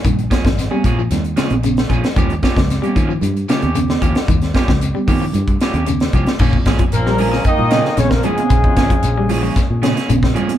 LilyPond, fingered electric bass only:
\new Staff \with { instrumentName = "Fingered electric bass" } { \clef bass \time 4/4 \key bes \dorian \tempo 4 = 113 bes,,8 r16 aes,,8 r16 bes,8 ees,8 r16 bes,,8. bes,,16 r16 | ees,8 r16 des,8 r16 ees8 g,8 r16 ees,8. ees,16 r16 | ees,8 r16 des,8 r16 ees8 g,8 r16 ees,8. c,16 r16 | bes,,16 f,16 aes,,16 r16 bes,,4 r16 bes,8 r16 bes,,8 r8 |
bes,,16 f,16 aes,,16 r16 bes,,4 r16 bes,8 r16 bes,,8 r8 | }